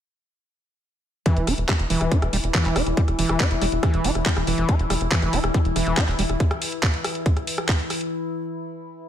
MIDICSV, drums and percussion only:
0, 0, Header, 1, 2, 480
1, 0, Start_track
1, 0, Tempo, 428571
1, 1410, Time_signature, 4, 2, 24, 8
1, 10177, End_track
2, 0, Start_track
2, 0, Title_t, "Drums"
2, 1409, Note_on_c, 9, 36, 108
2, 1410, Note_on_c, 9, 42, 65
2, 1521, Note_off_c, 9, 36, 0
2, 1522, Note_off_c, 9, 42, 0
2, 1530, Note_on_c, 9, 42, 42
2, 1642, Note_off_c, 9, 42, 0
2, 1650, Note_on_c, 9, 37, 38
2, 1650, Note_on_c, 9, 46, 105
2, 1762, Note_off_c, 9, 37, 0
2, 1762, Note_off_c, 9, 46, 0
2, 1770, Note_on_c, 9, 42, 38
2, 1882, Note_off_c, 9, 42, 0
2, 1889, Note_on_c, 9, 36, 119
2, 1890, Note_on_c, 9, 37, 73
2, 1890, Note_on_c, 9, 39, 120
2, 1890, Note_on_c, 9, 42, 65
2, 2001, Note_off_c, 9, 36, 0
2, 2002, Note_off_c, 9, 37, 0
2, 2002, Note_off_c, 9, 39, 0
2, 2002, Note_off_c, 9, 42, 0
2, 2010, Note_on_c, 9, 42, 41
2, 2122, Note_off_c, 9, 42, 0
2, 2129, Note_on_c, 9, 46, 98
2, 2241, Note_off_c, 9, 46, 0
2, 2250, Note_on_c, 9, 37, 40
2, 2250, Note_on_c, 9, 42, 44
2, 2362, Note_off_c, 9, 37, 0
2, 2362, Note_off_c, 9, 42, 0
2, 2369, Note_on_c, 9, 36, 119
2, 2369, Note_on_c, 9, 42, 72
2, 2481, Note_off_c, 9, 36, 0
2, 2481, Note_off_c, 9, 42, 0
2, 2489, Note_on_c, 9, 37, 68
2, 2489, Note_on_c, 9, 42, 41
2, 2601, Note_off_c, 9, 37, 0
2, 2601, Note_off_c, 9, 42, 0
2, 2609, Note_on_c, 9, 46, 101
2, 2721, Note_off_c, 9, 46, 0
2, 2730, Note_on_c, 9, 42, 43
2, 2842, Note_off_c, 9, 42, 0
2, 2849, Note_on_c, 9, 36, 115
2, 2849, Note_on_c, 9, 37, 36
2, 2849, Note_on_c, 9, 39, 113
2, 2849, Note_on_c, 9, 42, 65
2, 2961, Note_off_c, 9, 36, 0
2, 2961, Note_off_c, 9, 37, 0
2, 2961, Note_off_c, 9, 39, 0
2, 2961, Note_off_c, 9, 42, 0
2, 2969, Note_on_c, 9, 39, 38
2, 2969, Note_on_c, 9, 42, 40
2, 3081, Note_off_c, 9, 39, 0
2, 3081, Note_off_c, 9, 42, 0
2, 3089, Note_on_c, 9, 37, 79
2, 3089, Note_on_c, 9, 46, 91
2, 3201, Note_off_c, 9, 37, 0
2, 3201, Note_off_c, 9, 46, 0
2, 3209, Note_on_c, 9, 42, 40
2, 3321, Note_off_c, 9, 42, 0
2, 3329, Note_on_c, 9, 36, 119
2, 3329, Note_on_c, 9, 42, 66
2, 3441, Note_off_c, 9, 36, 0
2, 3441, Note_off_c, 9, 42, 0
2, 3449, Note_on_c, 9, 37, 36
2, 3449, Note_on_c, 9, 42, 41
2, 3561, Note_off_c, 9, 37, 0
2, 3561, Note_off_c, 9, 42, 0
2, 3569, Note_on_c, 9, 46, 105
2, 3681, Note_off_c, 9, 46, 0
2, 3689, Note_on_c, 9, 37, 78
2, 3689, Note_on_c, 9, 42, 39
2, 3801, Note_off_c, 9, 37, 0
2, 3801, Note_off_c, 9, 42, 0
2, 3809, Note_on_c, 9, 36, 123
2, 3809, Note_on_c, 9, 39, 116
2, 3809, Note_on_c, 9, 42, 64
2, 3921, Note_off_c, 9, 36, 0
2, 3921, Note_off_c, 9, 39, 0
2, 3921, Note_off_c, 9, 42, 0
2, 3929, Note_on_c, 9, 42, 41
2, 4041, Note_off_c, 9, 42, 0
2, 4049, Note_on_c, 9, 37, 38
2, 4049, Note_on_c, 9, 46, 98
2, 4161, Note_off_c, 9, 37, 0
2, 4161, Note_off_c, 9, 46, 0
2, 4169, Note_on_c, 9, 42, 42
2, 4281, Note_off_c, 9, 42, 0
2, 4289, Note_on_c, 9, 36, 122
2, 4289, Note_on_c, 9, 37, 79
2, 4289, Note_on_c, 9, 42, 70
2, 4401, Note_off_c, 9, 36, 0
2, 4401, Note_off_c, 9, 37, 0
2, 4401, Note_off_c, 9, 42, 0
2, 4409, Note_on_c, 9, 42, 40
2, 4521, Note_off_c, 9, 42, 0
2, 4529, Note_on_c, 9, 46, 108
2, 4641, Note_off_c, 9, 46, 0
2, 4649, Note_on_c, 9, 37, 37
2, 4649, Note_on_c, 9, 42, 39
2, 4761, Note_off_c, 9, 37, 0
2, 4761, Note_off_c, 9, 42, 0
2, 4769, Note_on_c, 9, 36, 123
2, 4769, Note_on_c, 9, 39, 124
2, 4769, Note_on_c, 9, 42, 65
2, 4881, Note_off_c, 9, 36, 0
2, 4881, Note_off_c, 9, 39, 0
2, 4881, Note_off_c, 9, 42, 0
2, 4889, Note_on_c, 9, 37, 73
2, 4889, Note_on_c, 9, 42, 39
2, 5001, Note_off_c, 9, 37, 0
2, 5001, Note_off_c, 9, 42, 0
2, 5009, Note_on_c, 9, 46, 96
2, 5121, Note_off_c, 9, 46, 0
2, 5129, Note_on_c, 9, 42, 40
2, 5241, Note_off_c, 9, 42, 0
2, 5249, Note_on_c, 9, 36, 124
2, 5250, Note_on_c, 9, 37, 41
2, 5250, Note_on_c, 9, 42, 68
2, 5361, Note_off_c, 9, 36, 0
2, 5362, Note_off_c, 9, 37, 0
2, 5362, Note_off_c, 9, 42, 0
2, 5370, Note_on_c, 9, 42, 41
2, 5482, Note_off_c, 9, 42, 0
2, 5489, Note_on_c, 9, 37, 79
2, 5489, Note_on_c, 9, 46, 114
2, 5601, Note_off_c, 9, 37, 0
2, 5601, Note_off_c, 9, 46, 0
2, 5610, Note_on_c, 9, 42, 39
2, 5722, Note_off_c, 9, 42, 0
2, 5729, Note_on_c, 9, 36, 123
2, 5730, Note_on_c, 9, 39, 119
2, 5730, Note_on_c, 9, 42, 59
2, 5841, Note_off_c, 9, 36, 0
2, 5842, Note_off_c, 9, 39, 0
2, 5842, Note_off_c, 9, 42, 0
2, 5850, Note_on_c, 9, 37, 38
2, 5850, Note_on_c, 9, 42, 39
2, 5962, Note_off_c, 9, 37, 0
2, 5962, Note_off_c, 9, 42, 0
2, 5970, Note_on_c, 9, 46, 101
2, 6082, Note_off_c, 9, 46, 0
2, 6090, Note_on_c, 9, 37, 85
2, 6090, Note_on_c, 9, 42, 39
2, 6202, Note_off_c, 9, 37, 0
2, 6202, Note_off_c, 9, 42, 0
2, 6209, Note_on_c, 9, 36, 122
2, 6210, Note_on_c, 9, 42, 67
2, 6321, Note_off_c, 9, 36, 0
2, 6322, Note_off_c, 9, 42, 0
2, 6330, Note_on_c, 9, 42, 37
2, 6442, Note_off_c, 9, 42, 0
2, 6450, Note_on_c, 9, 37, 38
2, 6450, Note_on_c, 9, 46, 104
2, 6562, Note_off_c, 9, 37, 0
2, 6562, Note_off_c, 9, 46, 0
2, 6570, Note_on_c, 9, 42, 37
2, 6682, Note_off_c, 9, 42, 0
2, 6689, Note_on_c, 9, 36, 127
2, 6690, Note_on_c, 9, 37, 78
2, 6690, Note_on_c, 9, 39, 114
2, 6690, Note_on_c, 9, 42, 61
2, 6801, Note_off_c, 9, 36, 0
2, 6802, Note_off_c, 9, 37, 0
2, 6802, Note_off_c, 9, 39, 0
2, 6802, Note_off_c, 9, 42, 0
2, 6810, Note_on_c, 9, 39, 38
2, 6810, Note_on_c, 9, 42, 41
2, 6922, Note_off_c, 9, 39, 0
2, 6922, Note_off_c, 9, 42, 0
2, 6930, Note_on_c, 9, 46, 99
2, 7042, Note_off_c, 9, 46, 0
2, 7050, Note_on_c, 9, 37, 40
2, 7050, Note_on_c, 9, 42, 37
2, 7162, Note_off_c, 9, 37, 0
2, 7162, Note_off_c, 9, 42, 0
2, 7169, Note_on_c, 9, 36, 118
2, 7170, Note_on_c, 9, 42, 64
2, 7281, Note_off_c, 9, 36, 0
2, 7282, Note_off_c, 9, 42, 0
2, 7290, Note_on_c, 9, 37, 80
2, 7290, Note_on_c, 9, 42, 38
2, 7402, Note_off_c, 9, 37, 0
2, 7402, Note_off_c, 9, 42, 0
2, 7410, Note_on_c, 9, 46, 116
2, 7522, Note_off_c, 9, 46, 0
2, 7530, Note_on_c, 9, 42, 37
2, 7642, Note_off_c, 9, 42, 0
2, 7650, Note_on_c, 9, 36, 127
2, 7650, Note_on_c, 9, 37, 39
2, 7650, Note_on_c, 9, 39, 116
2, 7650, Note_on_c, 9, 42, 61
2, 7762, Note_off_c, 9, 36, 0
2, 7762, Note_off_c, 9, 37, 0
2, 7762, Note_off_c, 9, 39, 0
2, 7762, Note_off_c, 9, 42, 0
2, 7770, Note_on_c, 9, 42, 38
2, 7882, Note_off_c, 9, 42, 0
2, 7890, Note_on_c, 9, 37, 84
2, 7890, Note_on_c, 9, 46, 100
2, 8002, Note_off_c, 9, 37, 0
2, 8002, Note_off_c, 9, 46, 0
2, 8010, Note_on_c, 9, 42, 41
2, 8122, Note_off_c, 9, 42, 0
2, 8130, Note_on_c, 9, 36, 121
2, 8130, Note_on_c, 9, 42, 65
2, 8242, Note_off_c, 9, 36, 0
2, 8242, Note_off_c, 9, 42, 0
2, 8250, Note_on_c, 9, 37, 40
2, 8250, Note_on_c, 9, 42, 37
2, 8362, Note_off_c, 9, 37, 0
2, 8362, Note_off_c, 9, 42, 0
2, 8370, Note_on_c, 9, 46, 112
2, 8482, Note_off_c, 9, 46, 0
2, 8490, Note_on_c, 9, 37, 83
2, 8490, Note_on_c, 9, 42, 37
2, 8602, Note_off_c, 9, 37, 0
2, 8602, Note_off_c, 9, 42, 0
2, 8610, Note_on_c, 9, 36, 127
2, 8610, Note_on_c, 9, 39, 113
2, 8610, Note_on_c, 9, 42, 60
2, 8722, Note_off_c, 9, 36, 0
2, 8722, Note_off_c, 9, 39, 0
2, 8722, Note_off_c, 9, 42, 0
2, 8730, Note_on_c, 9, 42, 40
2, 8842, Note_off_c, 9, 42, 0
2, 8850, Note_on_c, 9, 37, 43
2, 8850, Note_on_c, 9, 46, 97
2, 8962, Note_off_c, 9, 37, 0
2, 8962, Note_off_c, 9, 46, 0
2, 8970, Note_on_c, 9, 42, 36
2, 9082, Note_off_c, 9, 42, 0
2, 10177, End_track
0, 0, End_of_file